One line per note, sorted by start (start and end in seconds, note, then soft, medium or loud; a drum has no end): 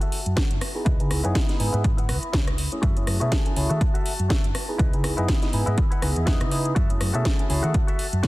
0.00 0.84 F#4 medium
0.00 0.19 F#4 loud
0.00 0.19 A4 loud
0.00 0.84 E5 medium
0.00 0.20 E5 loud
0.00 0.84 A5 medium
0.00 closed hi-hat medium
0.12 open hi-hat loud
0.26 0.34 F#2 medium
0.26 closed hi-hat soft
0.36 0.50 F#4 medium
0.36 0.51 A4 medium
0.36 0.51 F#5 medium
0.36 kick loud
0.36 snare loud
0.36 closed hi-hat medium
0.51 0.59 F#1 medium
0.51 closed hi-hat medium
0.61 muted clean electric guitar stroke soft
0.61 cross-stick medium
0.61 open hi-hat loud
0.75 0.95 B3 medium
0.75 0.96 D#4 medium
0.75 0.96 E4 medium
0.75 0.96 G#4 medium
0.85 0.96 C#2 medium
0.85 1.00 E4 loud
0.85 2.81 E4 medium
0.85 1.00 B4 loud
0.85 1.00 D#5 loud
0.85 2.81 B5 medium
0.85 2.81 D#6 medium
0.85 kick loud
0.85 closed hi-hat medium
0.99 1.08 C#3 medium
0.99 1.20 B3 medium
0.99 1.20 D#4 medium
0.99 1.20 E4 medium
0.99 1.21 G#4 medium
0.99 closed hi-hat soft
1.10 1.21 C#2 medium
1.10 muted clean electric guitar stroke soft
1.10 cross-stick medium
1.10 open hi-hat loud
1.24 1.33 F#2 medium
1.24 1.46 B3 medium
1.24 1.46 D#4 medium
1.24 1.35 E4 medium
1.24 1.46 E4 medium
1.24 1.46 G#4 loud
1.24 1.35 B4 medium
1.24 1.36 C#5 loud
1.24 closed hi-hat soft
1.35 kick loud
1.35 snare loud
1.35 closed hi-hat medium
1.48 1.57 B3 medium
1.48 1.57 D#4 medium
1.48 1.57 E4 medium
1.48 1.57 G#4 medium
1.48 muted clean electric guitar stroke soft
1.48 snare soft
1.48 closed hi-hat medium
1.59 1.70 G#2 medium
1.59 1.82 B3 medium
1.59 1.82 D#4 medium
1.59 1.82 E4 medium
1.59 1.83 G#4 loud
1.59 open hi-hat loud
1.73 2.10 G#2 medium
1.73 1.84 E4 medium
1.73 1.84 B4 medium
1.73 1.85 E5 medium
1.73 closed hi-hat soft
1.84 kick loud
1.84 closed hi-hat medium
1.97 2.15 E4 loud
1.97 2.16 B4 loud
1.97 2.16 F#5 loud
1.97 closed hi-hat medium
2.09 2.19 C#2 medium
2.09 cross-stick medium
2.09 open hi-hat loud
2.23 closed hi-hat soft
2.33 2.67 C#2 medium
2.33 2.47 E4 medium
2.33 2.47 B4 medium
2.33 2.48 C#5 medium
2.33 kick loud
2.33 snare loud
2.33 closed hi-hat medium
2.48 cross-stick medium
2.48 closed hi-hat medium
2.57 muted clean electric guitar stroke soft
2.57 open hi-hat loud
2.72 2.92 A3 medium
2.72 2.93 C#4 medium
2.72 2.93 E4 medium
2.72 2.93 G#4 medium
2.72 closed hi-hat soft
2.82 2.93 F#2 medium
2.82 2.96 F#4 loud
2.82 4.77 F#4 medium
2.82 2.97 A4 medium
2.82 4.77 E5 medium
2.82 2.97 E5 loud
2.82 4.77 A5 medium
2.82 kick loud
2.82 closed hi-hat medium
2.96 3.05 F#1 medium
2.96 3.17 A3 medium
2.96 3.17 C#4 medium
2.96 3.17 E4 medium
2.96 3.17 G#4 medium
2.96 closed hi-hat soft
3.06 3.18 F#2 medium
3.06 muted clean electric guitar stroke soft
3.06 cross-stick medium
3.06 open hi-hat loud
3.20 3.29 B2 medium
3.20 3.42 A3 medium
3.20 3.42 C#4 medium
3.20 3.43 E4 medium
3.20 3.31 F#4 medium
3.20 3.43 G#4 loud
3.20 3.32 A4 medium
3.20 3.32 B4 medium
3.20 closed hi-hat soft
3.32 kick loud
3.32 snare loud
3.32 closed hi-hat medium
3.45 3.54 A3 medium
3.45 3.54 C#4 medium
3.45 3.54 E4 medium
3.45 3.54 G#4 medium
3.45 muted clean electric guitar stroke soft
3.45 closed hi-hat medium
3.56 3.67 C#2 medium
3.56 3.79 A3 medium
3.56 3.79 C#4 medium
3.56 3.79 E4 medium
3.56 3.79 G#4 loud
3.56 open hi-hat loud
3.70 3.78 D#3 medium
3.70 3.81 F#4 medium
3.70 3.81 A4 medium
3.70 3.82 E5 medium
3.70 closed hi-hat soft
3.81 kick loud
3.81 closed hi-hat medium
3.94 4.12 F#4 loud
3.94 4.13 A4 loud
3.94 4.13 E5 loud
3.94 closed hi-hat soft
4.06 open hi-hat loud
4.19 4.28 F#2 medium
4.19 closed hi-hat soft
4.29 4.44 F#4 medium
4.29 4.44 A4 medium
4.29 4.45 E5 medium
4.29 kick loud
4.29 snare loud
4.29 closed hi-hat medium
4.44 4.52 F#1 medium
4.44 closed hi-hat medium
4.54 muted clean electric guitar stroke soft
4.54 cross-stick medium
4.54 open hi-hat loud
4.68 4.89 B3 medium
4.68 4.89 D#4 medium
4.68 4.89 E4 medium
4.68 4.89 G#4 medium
4.78 4.90 C#2 medium
4.78 4.93 E4 loud
4.78 6.74 E4 medium
4.78 4.93 B4 loud
4.78 6.74 D#5 medium
4.78 4.94 D#5 loud
4.78 6.74 B5 medium
4.78 kick loud
4.78 closed hi-hat medium
4.93 5.01 C#3 loud
4.93 5.14 B3 medium
4.93 5.14 D#4 medium
4.93 5.14 E4 medium
4.93 5.14 G#4 medium
4.93 closed hi-hat soft
5.03 5.15 C#2 medium
5.03 muted clean electric guitar stroke soft
5.03 cross-stick medium
5.03 open hi-hat loud
5.17 5.26 F#2 medium
5.17 5.39 B3 medium
5.17 5.39 D#4 medium
5.17 5.28 E4 medium
5.17 5.39 E4 medium
5.17 5.39 G#4 loud
5.17 5.29 B4 medium
5.17 5.29 D#5 medium
5.17 closed hi-hat soft
5.28 kick loud
5.28 snare loud
5.28 closed hi-hat medium
5.42 5.50 B3 medium
5.42 5.51 D#4 medium
5.42 5.51 E4 medium
5.42 5.51 G#4 medium
5.42 muted clean electric guitar stroke soft
5.42 snare soft
5.42 closed hi-hat soft
5.53 5.64 G#2 medium
5.53 5.76 B3 medium
5.53 5.76 D#4 medium
5.53 5.76 E4 medium
5.53 5.76 G#4 medium
5.53 open hi-hat loud
5.66 5.75 G#2 medium
5.66 5.77 E4 medium
5.66 5.78 B4 medium
5.66 5.78 D#5 medium
5.66 closed hi-hat soft
5.78 kick loud
5.78 closed hi-hat medium
5.91 6.09 E4 loud
5.91 6.09 B4 loud
5.91 6.10 F#5 loud
5.91 closed hi-hat soft
6.02 6.13 C#2 medium
6.02 6.24 B3 medium
6.02 6.24 D#4 medium
6.02 6.24 E4 medium
6.02 6.24 G#4 medium
6.02 cross-stick medium
6.02 open hi-hat loud
6.16 6.42 E2 medium
6.16 closed hi-hat soft
6.26 6.49 B3 medium
6.26 6.49 D#4 medium
6.26 6.40 E4 medium
6.26 6.49 E4 medium
6.26 6.49 G#4 loud
6.26 6.41 B4 medium
6.26 6.41 F#5 medium
6.26 kick loud
6.26 snare loud
6.26 closed hi-hat medium
6.41 6.72 C#3 medium
6.41 cross-stick medium
6.41 closed hi-hat soft
6.51 6.74 B3 medium
6.51 6.74 D#4 medium
6.51 6.74 E4 medium
6.51 6.74 G#4 loud
6.51 muted clean electric guitar stroke soft
6.51 open hi-hat loud
6.65 closed hi-hat soft
6.75 6.87 F#2 medium
6.75 6.90 F#4 loud
6.75 8.27 F#4 medium
6.75 6.90 A4 medium
6.75 8.27 E5 medium
6.75 6.90 E5 loud
6.75 8.27 A5 medium
6.75 kick loud
6.75 closed hi-hat medium
6.89 6.98 F#1 medium
6.89 7.10 A3 medium
6.89 7.10 C#4 medium
6.89 7.10 E4 medium
6.89 7.11 G#4 medium
6.89 closed hi-hat soft
7.00 7.11 F#2 medium
7.00 muted clean electric guitar stroke soft
7.00 cross-stick medium
7.00 open hi-hat loud
7.14 7.23 B2 medium
7.14 7.36 A3 medium
7.14 7.36 C#4 medium
7.14 7.36 E4 medium
7.14 7.25 F#4 medium
7.14 7.36 G#4 loud
7.14 7.25 A4 medium
7.14 7.26 E5 medium
7.14 closed hi-hat soft
7.25 kick loud
7.25 snare loud
7.25 closed hi-hat medium
7.38 7.47 A3 medium
7.38 7.47 C#4 medium
7.38 7.47 E4 medium
7.38 7.48 G#4 medium
7.38 muted clean electric guitar stroke soft
7.38 closed hi-hat medium
7.49 7.60 C#2 medium
7.49 7.72 A3 medium
7.49 7.72 C#4 medium
7.49 7.72 E4 medium
7.49 7.73 G#4 loud
7.49 open hi-hat loud
7.63 7.72 D#3 medium
7.63 7.74 F#4 medium
7.63 7.74 A4 medium
7.63 7.75 F#5 medium
7.63 closed hi-hat soft
7.74 kick loud
7.74 closed hi-hat medium
7.87 8.06 F#4 loud
7.87 8.06 A4 loud
7.87 8.06 E5 loud
7.87 closed hi-hat soft
7.99 open hi-hat loud
8.13 8.21 F#2 medium
8.13 closed hi-hat soft
8.23 8.27 F#4 medium
8.23 8.27 A4 medium
8.23 kick loud
8.23 snare loud
8.23 closed hi-hat medium